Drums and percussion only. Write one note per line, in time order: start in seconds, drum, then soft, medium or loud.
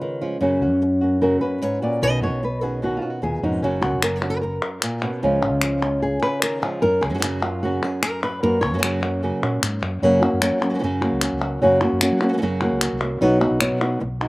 4.02 clap medium
4.22 clap soft
4.82 clap medium
5.02 clap soft
5.62 clap medium
5.82 clap soft
6.42 clap medium
6.63 clap soft
7.22 clap medium
7.42 clap soft
8.03 clap medium
8.83 clap medium
9.03 clap soft
9.63 clap medium
9.83 clap soft
10.42 clap medium
11.21 clap medium
11.42 clap soft
12.01 clap medium
12.21 clap soft
12.81 clap medium
13.01 clap soft
13.61 clap medium
13.81 clap soft